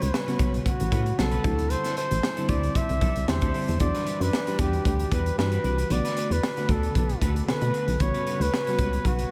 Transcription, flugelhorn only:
0.03 0.39 B4 medium
0.67 1.20 F#4 medium
1.19 1.72 A4 medium
1.71 1.97 C5 loud
1.98 2.51 C5 loud
2.49 2.78 D5 medium
2.76 3.30 E5 medium
3.29 3.80 C5 medium
3.81 4.24 D5 medium
4.22 4.61 B4 medium
4.60 4.86 G4 medium
4.86 5.14 G4 medium
5.12 5.38 B4 medium
5.39 5.93 B4 medium
5.92 6.34 D5 loud
6.32 6.72 B4 medium
6.71 6.96 A4 medium
6.98 7.21 A4 medium
7.50 8.03 B4 medium
8.01 8.44 C#5 loud
8.42 9.08 B4 loud
9.07 9.31 F#4 medium

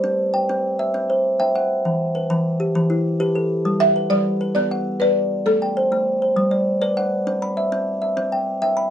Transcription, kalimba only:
0.00 0.34 C4 medium
0.00 0.19 C5 medium
0.34 0.79 G5 medium
0.49 0.79 C4 medium
0.79 1.25 E5 medium
0.94 1.25 C4 medium
1.10 1.55 C5 medium
1.40 1.70 E5 medium
1.40 1.85 G5 medium
1.55 2.00 F#5 medium
1.85 2.15 E3 medium
2.15 2.60 B4 medium
2.30 2.60 E3 medium
2.60 3.05 G4 medium
2.75 3.05 E3 medium
2.90 3.35 E4 medium
3.20 3.50 G4 medium
3.20 3.65 B4 medium
3.35 3.81 A4 medium
3.65 3.96 G3 medium
3.81 4.26 F#5 medium
3.96 4.40 B4 medium
4.11 4.41 G3 medium
4.41 4.71 B4 medium
4.56 4.86 B3 medium
4.71 5.16 F#5 medium
5.02 5.31 D5 medium
5.46 5.76 A3 medium
5.62 6.07 G5 medium
5.77 6.21 C5 medium
5.92 6.22 A3 medium
6.22 6.52 C5 medium
6.37 6.67 G3 medium
6.51 6.80 D5 medium
6.82 7.12 B4 medium
6.82 7.27 D5 medium
6.97 7.42 F#5 medium
7.27 7.57 C4 medium
7.42 7.87 B5 medium
7.57 8.01 E5 medium
7.72 8.02 C4 loud
8.02 8.47 E5 medium
8.17 8.47 C4 medium
8.32 8.61 G5 medium
8.62 8.90 E5 medium
8.62 8.90 G5 medium
8.77 8.90 B5 medium

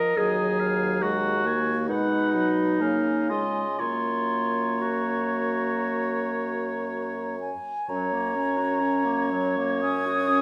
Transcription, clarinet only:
0.00 0.19 A#4 medium
0.17 1.04 G#4 medium
1.02 1.88 F#4 medium
1.88 3.31 D#4 medium
3.30 3.79 F4 medium
3.79 4.82 F4 medium
4.81 7.40 F#4 soft
7.90 8.14 F#3 soft
8.12 8.37 A#3 soft
8.35 8.59 C#4 soft
8.58 8.82 F#4 soft
8.81 9.06 C#4 soft
9.05 9.32 A#3 soft
9.31 9.59 F#3 soft
9.57 9.81 A#3 soft
9.82 10.08 C#4 soft
10.06 10.30 F#4 soft
10.29 10.42 C#4 soft

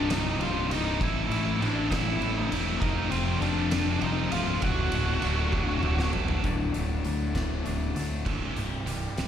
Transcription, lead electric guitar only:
0.00 0.11 D5 medium
0.11 0.39 D#4 medium
0.11 0.42 D#5 medium
0.40 0.69 F4 medium
0.40 0.68 F5 medium
0.72 1.00 D#4 medium
0.72 1.03 D#5 medium
1.03 1.58 E4 medium
1.03 1.64 E5 loud
1.60 1.89 D4 medium
1.60 1.89 D5 medium
1.90 2.55 E4 medium
1.90 2.35 E5 loud
2.35 2.55 D#5 loud
2.81 3.10 D#4 medium
2.81 3.11 D#5 loud
3.10 3.39 C4 medium
3.10 3.41 C5 medium
3.41 3.98 D4 medium
3.41 4.03 D5 medium
4.03 4.31 D#4 medium
4.03 4.31 D#5 loud
4.32 4.60 F4 medium
4.32 4.64 F5 loud
4.63 6.10 F#4 medium
4.63 6.11 F#5 loud

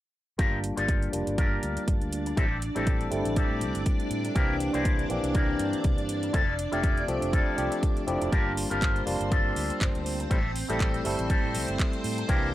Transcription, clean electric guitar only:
0.38 0.58 F4 loud
0.38 0.58 G4 medium
0.38 0.59 A#4 loud
0.77 1.07 F4 medium
0.77 1.08 G4 medium
0.77 1.08 A4 medium
1.37 1.82 F4 medium
1.37 1.82 G4 medium
1.37 1.83 A#4 medium
2.25 muted clean electric guitar stroke medium
2.36 2.56 C4 loud
2.36 2.57 G4 medium
2.36 2.57 A4 loud
2.75 3.06 C4 medium
2.75 3.06 G4 medium
2.75 3.07 A4 medium
3.36 3.80 C4 medium
3.36 3.81 G4 medium
3.36 3.81 A4 medium
4.24 muted clean electric guitar stroke medium
4.35 4.55 C4 loud
4.35 4.55 E4 medium
4.35 4.55 A#4 loud
4.73 5.04 C4 medium
4.73 5.04 E4 medium
4.73 5.05 C5 medium
5.34 5.79 C4 medium
5.34 5.79 E4 medium
5.34 5.79 A#4 medium
6.22 muted clean electric guitar stroke medium
6.33 6.53 E4 loud
6.33 6.53 F4 medium
6.33 6.54 A4 loud
6.72 7.02 E4 medium
6.72 7.03 F4 medium
6.72 7.03 A4 medium
7.32 7.77 E4 medium
7.32 7.77 F4 medium
7.32 7.78 A4 medium
8.21 muted clean electric guitar stroke medium
8.32 8.51 F4 loud
8.32 8.52 G4 medium
8.32 8.52 A#4 loud
8.70 9.01 F4 medium
8.70 9.01 G4 medium
8.70 9.02 A#4 medium
9.31 9.75 F4 medium
9.31 9.76 G4 medium
9.31 9.76 A4 medium
10.19 muted clean electric guitar stroke medium
10.30 10.50 C4 loud
10.30 10.50 G4 medium
10.30 10.50 A4 loud
10.69 10.99 C4 medium
10.69 11.00 G4 medium
10.69 11.00 A4 medium
11.29 11.74 C4 medium
11.29 11.74 G4 medium
11.29 11.74 A4 medium
12.17 muted clean electric guitar stroke medium
12.28 12.48 C4 loud
12.28 12.48 E4 loud
12.28 12.49 A#4 loud

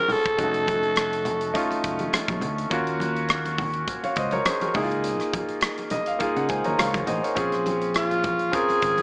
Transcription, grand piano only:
0.00 0.37 G#3 medium
0.00 0.40 C4 medium
0.00 0.38 C#4 medium
0.00 0.41 F4 medium
0.37 0.45 G#3 medium
0.37 1.22 C#4 medium
0.37 1.23 D#4 medium
0.37 1.23 F#4 medium
0.44 1.25 A3 medium
1.54 2.38 A3 medium
1.54 2.39 C#4 medium
1.54 2.39 D#4 medium
1.54 2.40 F4 medium
2.70 3.55 A#3 medium
2.70 3.55 C#4 medium
2.70 3.56 F4 medium
2.70 3.56 F#4 medium
4.04 4.17 C#5 soft
4.04 4.16 F5 medium
4.17 4.32 C5 medium
4.17 4.32 D#5 medium
4.32 4.45 A#4 medium
4.32 4.45 C#5 medium
4.46 4.61 G#4 soft
4.46 4.61 C5 medium
4.62 4.90 F#4 soft
4.62 4.89 A#4 medium
4.74 5.68 A#3 medium
4.74 5.69 D#4 medium
4.74 4.82 E4 medium
4.74 5.69 G#4 medium
4.82 5.72 F4 medium
5.91 6.06 D#5 medium
6.07 6.19 F5 medium
6.19 7.04 A#3 medium
6.19 7.04 D#4 medium
6.19 7.05 F4 medium
6.19 6.49 G#4 medium
6.19 6.35 F5 medium
6.37 6.49 F#5 medium
6.49 6.65 G#4 soft
6.49 6.65 C5 medium
6.49 6.64 G#5 medium
6.65 6.78 A#4 medium
6.65 6.78 C#5 medium
6.65 6.78 A#5 medium
6.79 7.07 C#5 medium
6.79 7.06 F5 medium
6.79 7.33 C#6 medium
7.07 7.23 C5 soft
7.07 7.22 D#5 medium
7.23 7.51 A#4 soft
7.23 7.51 C#5 medium
7.35 8.20 C4 medium
7.35 8.20 C#4 medium
7.35 8.21 F4 medium
7.35 8.21 G#4 medium
8.52 9.02 C4 medium
8.52 9.02 C#4 medium
8.52 9.02 F4 medium
8.52 9.02 A#4 medium

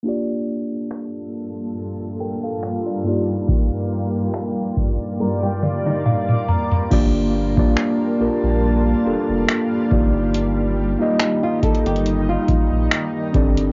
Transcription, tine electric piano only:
0.03 3.00 A#3 medium
0.03 3.01 D4 medium
0.03 2.16 F4 medium
0.07 2.17 G4 medium
0.07 2.18 D5 medium
2.20 2.42 A#4 medium
2.20 2.42 G5 medium
2.43 2.84 A4 medium
2.43 2.84 F5 medium
2.86 3.05 F4 medium
2.86 3.08 D5 medium
3.03 6.43 G2 medium
3.03 6.44 A#3 medium
3.03 6.44 D#4 medium
3.03 6.45 F4 medium
3.08 6.45 G4 medium
3.08 5.62 D5 medium
5.63 6.03 D5 medium
6.06 6.46 F5 medium
6.49 6.88 A#5 medium
6.91 7.32 A#3 loud
6.91 7.33 D4 loud
6.91 7.33 F4 medium
6.91 7.33 G4 loud
6.91 7.34 D5 loud
7.56 7.98 A#3 medium
7.56 7.98 D4 medium
7.56 7.99 F4 medium
7.56 7.99 G4 medium
7.56 7.99 D5 loud
8.19 8.75 A#3 medium
8.19 8.76 D4 medium
8.19 8.76 F4 medium
8.19 8.76 G4 medium
8.19 8.77 A#4 medium
9.04 9.88 A#3 medium
9.04 9.88 D4 medium
9.04 9.88 F4 medium
9.04 9.89 G4 medium
9.04 9.89 A4 medium
9.90 10.77 A#3 medium
9.90 10.77 D#4 medium
9.90 10.77 F4 medium
9.90 10.78 G4 medium
9.90 10.78 D5 medium
10.99 12.08 A#3 medium
10.99 12.08 D#4 medium
10.99 12.09 F4 medium
10.99 12.09 G4 medium
10.99 12.09 D#5 medium
13.33 13.72 C4 medium
13.33 13.72 D4 medium
13.33 13.72 G4 medium
13.33 13.72 A4 medium
13.33 13.72 D5 medium

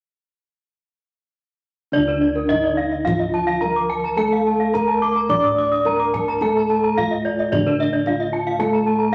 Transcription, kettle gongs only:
1.92 3.57 D4 medium
1.97 5.28 D2 medium
2.48 2.56 D#4 soft
3.61 3.69 D#4 soft
4.17 5.81 A4 medium
4.74 4.82 D#4 soft
5.29 6.93 A2 medium
5.85 5.93 D#4 soft
6.42 8.02 A4 medium
6.98 7.06 D#4 soft
7.53 9.08 A2 medium
8.07 8.15 D#4 soft
8.59 9.15 A4 medium

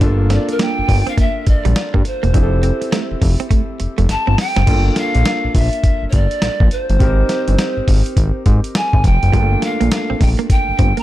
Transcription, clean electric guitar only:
0.01 0.11 D4 medium
0.30 0.40 C4 medium
0.49 muted clean electric guitar stroke soft
0.59 0.70 A#3 medium
0.88 muted clean electric guitar stroke soft
1.07 1.13 C4 medium
1.17 1.28 A#3 medium
1.47 muted clean electric guitar stroke soft
1.65 1.71 G3 medium
1.94 2.00 A#3 medium
2.05 muted clean electric guitar stroke soft
2.23 2.29 A#3 medium
2.34 2.44 D4 medium
2.63 2.73 C4 medium
2.81 muted clean electric guitar stroke soft
2.92 3.02 A3 medium
3.22 muted clean electric guitar stroke soft
3.40 3.46 C4 medium
3.51 3.61 A3 medium
3.80 muted clean electric guitar stroke soft
3.98 4.04 A3 medium
4.27 4.33 C4 medium
4.38 muted clean electric guitar stroke soft
4.56 4.62 C4 medium
9.33 9.44 G3 loud
9.62 muted clean electric guitar stroke soft
9.81 9.87 A#3 medium
10.10 10.16 C4 medium
10.21 muted clean electric guitar stroke soft
10.39 10.45 A#3 medium
10.50 muted clean electric guitar stroke soft
10.79 10.89 C4 medium
10.97 11.03 A#3 medium

